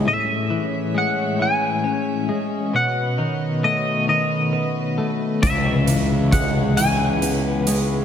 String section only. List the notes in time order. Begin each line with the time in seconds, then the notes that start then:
0.06 C#4 G#4 C#5 E5
2.75 F#4 B4 D#5
5.42 G#3 E4 C#5